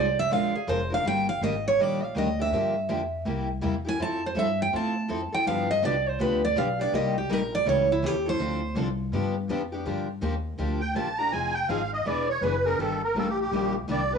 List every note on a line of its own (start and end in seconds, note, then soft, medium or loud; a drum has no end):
0.00 0.30 C2 medium
0.00 0.19 D5 medium
0.19 0.32 E5 loud
0.31 0.53 A#1 medium
0.31 0.52 F3 medium
0.31 0.53 G#3 medium
0.31 0.53 D4 medium
0.31 0.53 F4 medium
0.31 0.53 A#4 medium
0.31 0.55 F5 medium
0.54 0.69 G#4 soft
0.54 muted upright bass stroke soft
0.68 1.03 F1 medium
0.68 0.80 F3 medium
0.68 0.80 G#3 medium
0.68 0.80 D4 medium
0.68 0.80 F4 loud
0.68 0.80 A#4 medium
0.68 0.92 C5 medium
0.90 1.05 D4 medium
0.90 1.05 F4 soft
0.90 1.04 A#4 medium
0.90 1.06 F5 loud
1.04 1.40 G1 medium
1.04 1.26 D#3 medium
1.04 1.26 G3 medium
1.04 1.27 A#3 medium
1.04 1.27 D4 medium
1.04 1.27 G4 medium
1.04 1.29 G5 loud
1.29 1.42 F5 loud
1.41 1.76 G#1 loud
1.41 1.53 D#3 medium
1.41 1.54 G3 medium
1.41 1.54 A#3 medium
1.41 1.54 D4 medium
1.41 1.54 G4 medium
1.41 1.65 D#5 medium
1.68 1.81 C#5 loud
1.77 2.13 A#1 medium
1.77 2.00 D#3 medium
1.77 2.01 G3 medium
1.77 2.00 A#3 medium
1.77 2.01 D4 medium
1.77 2.01 G4 medium
1.81 2.04 D5 medium
2.04 2.16 F5 loud
2.15 2.51 D2 loud
2.15 2.27 D#3 medium
2.15 2.27 G3 medium
2.15 2.27 A#3 medium
2.15 2.28 D4 medium
2.15 2.28 G4 medium
2.15 2.39 D#5 medium
2.39 2.52 A#3 soft
2.39 2.52 D4 soft
2.39 2.52 G4 medium
2.39 3.23 E5 medium
2.51 2.87 G2 medium
2.51 2.74 D3 medium
2.51 2.74 F3 medium
2.51 2.74 A#3 medium
2.51 2.74 D4 medium
2.51 2.74 G4 medium
2.89 3.25 F2 medium
2.89 3.00 D3 medium
2.89 3.00 F3 medium
2.89 3.00 A#3 medium
2.89 3.01 D4 medium
2.89 3.01 G4 loud
3.25 3.61 C2 medium
3.25 3.47 C3 medium
3.25 3.47 G3 medium
3.25 3.47 A#3 medium
3.25 3.47 E4 medium
3.25 3.48 G4 medium
3.61 3.98 E2 medium
3.61 3.73 C3 medium
3.61 3.73 G3 medium
3.61 3.74 A#3 medium
3.61 3.74 E4 medium
3.61 3.74 G4 medium
3.85 3.99 A#3 soft
3.85 3.98 E4 medium
3.85 3.98 G4 medium
3.85 4.00 G#5 loud
3.99 4.34 F2 medium
3.99 4.20 F3 medium
3.99 4.20 C4 medium
3.99 4.21 E4 medium
3.99 4.21 A4 medium
3.99 4.23 A5 loud
4.26 4.38 C5 medium
4.35 4.71 G2 medium
4.35 4.46 F3 medium
4.35 4.47 C4 medium
4.35 4.47 E4 medium
4.35 4.47 A4 medium
4.39 4.60 E5 loud
4.62 4.74 G5 loud
4.73 5.08 A2 medium
4.73 4.94 F3 medium
4.73 4.94 C4 medium
4.73 4.94 E4 medium
4.73 4.94 A4 medium
4.73 5.30 A5 loud
5.09 5.31 F2 medium
5.09 5.20 F3 medium
5.09 5.21 C4 medium
5.09 5.21 E4 medium
5.09 5.21 A4 medium
5.32 5.47 C4 soft
5.32 5.46 E4 soft
5.32 5.45 A4 medium
5.32 5.47 G5 loud
5.32 muted upright bass stroke soft
5.46 5.82 G2 medium
5.46 5.67 D3 medium
5.46 5.68 F3 medium
5.46 5.68 B3 medium
5.46 5.68 D4 medium
5.46 5.68 G4 medium
5.46 5.69 F5 medium
5.71 5.83 D#5 loud
5.82 6.18 C2 medium
5.82 5.94 D3 medium
5.82 5.94 F3 medium
5.82 5.94 B3 medium
5.82 5.94 D4 loud
5.82 5.94 G4 medium
5.82 6.09 D5 medium
6.09 6.21 C5 loud
6.19 6.55 D2 medium
6.19 6.41 D3 medium
6.19 6.41 F3 medium
6.19 6.41 B3 medium
6.19 6.41 D4 medium
6.19 6.41 G4 medium
6.19 6.43 B4 medium
6.45 6.57 D5 loud
6.55 6.91 B1 medium
6.55 6.67 D3 medium
6.55 6.67 F3 medium
6.55 6.67 B3 medium
6.55 6.68 D4 medium
6.55 6.68 G4 loud
6.55 6.79 F5 loud
6.79 6.93 B3 medium
6.79 6.93 D4 medium
6.79 6.92 G4 medium
6.79 6.93 D5 medium
6.92 7.28 C2 medium
6.92 7.14 C3 medium
6.92 7.14 G3 medium
6.92 7.15 A#3 medium
6.92 7.15 D#4 medium
6.92 7.14 G4 medium
6.92 7.16 D#5 medium
7.18 7.33 G4 medium
7.29 7.65 A#1 medium
7.29 7.41 C3 loud
7.29 7.41 G3 loud
7.29 7.41 A#3 medium
7.29 7.41 D#4 medium
7.29 7.41 G4 medium
7.29 7.53 A#4 medium
7.55 7.67 D5 loud
7.66 8.01 C#2 medium
7.66 7.87 E3 medium
7.66 7.87 G3 medium
7.66 7.87 C#4 medium
7.66 7.88 E4 medium
7.66 7.88 A4 medium
7.66 7.90 C#5 medium
7.92 8.06 E4 medium
8.02 8.38 D#2 medium
8.02 8.14 E3 medium
8.02 8.14 G3 medium
8.02 8.14 C#4 medium
8.02 8.14 E4 medium
8.02 8.27 G4 medium
8.02 8.14 A4 medium
8.26 8.40 C#4 soft
8.26 8.39 E4 medium
8.26 8.39 A4 medium
8.26 8.74 C5 medium
8.39 8.75 D2 medium
8.39 8.60 D3 medium
8.39 8.61 F3 medium
8.39 8.61 C4 medium
8.39 8.61 D4 medium
8.39 8.61 A4 medium
8.75 9.11 C2 loud
8.75 8.87 D3 medium
8.75 8.87 F3 medium
8.75 8.87 C4 medium
8.75 8.87 D4 loud
8.75 8.87 A4 loud
9.12 9.47 G2 loud
9.12 9.34 D3 medium
9.12 9.34 F3 medium
9.12 9.34 B3 medium
9.12 9.34 D4 medium
9.12 9.34 G4 medium
9.48 9.84 F2 medium
9.48 9.60 D3 medium
9.48 9.60 F3 medium
9.48 9.60 B3 medium
9.48 9.61 D4 medium
9.48 9.61 G4 medium
9.72 9.85 B3 medium
9.72 9.85 D4 medium
9.72 9.85 G4 medium
9.85 10.21 G2 medium
9.85 10.07 D3 medium
9.85 10.07 F3 medium
9.85 10.07 A#3 medium
9.85 10.07 D4 medium
9.85 10.07 G4 medium
10.21 10.57 D#2 medium
10.21 10.33 D3 medium
10.21 10.33 F3 medium
10.21 10.33 A#3 medium
10.21 10.34 D4 medium
10.21 10.34 G4 medium
10.58 10.94 D2 medium
10.58 10.80 D3 medium
10.58 10.80 F3 medium
10.58 10.80 A#3 medium
10.58 10.80 D4 medium
10.58 10.80 G4 medium
10.81 10.95 G5 medium
10.95 11.31 A#1 medium
10.95 11.07 D3 medium
10.95 11.07 F3 medium
10.95 11.07 A#3 medium
10.95 11.07 D4 medium
10.95 11.07 G4 medium
10.95 11.18 A5 medium
11.18 11.32 A#3 soft
11.18 11.32 D4 medium
11.18 11.32 G4 medium
11.18 11.32 A#5 loud
11.32 11.68 F1 medium
11.32 11.53 F3 medium
11.32 11.53 C4 medium
11.32 11.54 D#4 medium
11.32 11.54 G#4 medium
11.32 11.55 G#5 medium
11.54 11.68 G5 loud
11.68 12.05 G#1 medium
11.68 11.80 F3 medium
11.68 11.80 C4 medium
11.68 11.81 D#4 medium
11.68 11.81 G#4 loud
11.68 11.91 F5 medium
11.93 12.06 D#5 medium
12.05 12.40 E1 medium
12.05 12.27 E3 medium
12.05 12.27 B3 medium
12.05 12.27 D4 medium
12.05 12.28 G#4 medium
12.05 12.27 B4 medium
12.05 12.29 D5 medium
12.29 12.42 C#5 medium
12.41 12.77 F#1 medium
12.41 12.54 E3 medium
12.41 12.54 B3 medium
12.41 12.54 D4 medium
12.41 12.54 G#4 medium
12.41 12.65 B4 medium
12.41 12.54 B4 loud
12.65 12.79 B3 soft
12.65 12.79 D4 medium
12.65 12.78 G#4 medium
12.65 12.79 A#4 medium
12.79 13.14 G1 medium
12.79 13.00 D#3 medium
12.79 13.00 G3 medium
12.79 13.01 A#3 medium
12.79 13.01 D4 medium
12.79 13.01 G4 medium
12.79 13.02 A4 medium
13.04 13.16 A#4 loud
13.15 13.51 A1 medium
13.15 13.27 D#3 medium
13.15 13.27 G3 medium
13.15 13.27 A#3 medium
13.15 13.27 D4 medium
13.15 13.28 G4 medium
13.15 13.29 A4 medium
13.29 13.40 G4 medium
13.41 13.75 G4 medium
13.51 13.87 A#1 medium
13.51 13.74 D#3 medium
13.51 13.74 G3 medium
13.51 13.74 A#3 medium
13.51 13.74 D4 medium
13.51 13.74 G4 medium
13.88 14.18 C2 medium
13.88 14.00 D#3 medium
13.88 14.00 G3 medium
13.88 14.00 A#3 medium
13.88 14.00 D4 medium
13.88 14.01 G4 medium
13.88 14.13 D5 medium
14.11 14.18 A#3 soft
14.11 14.18 D4 medium
14.11 14.18 G4 medium
14.11 14.18 B4 medium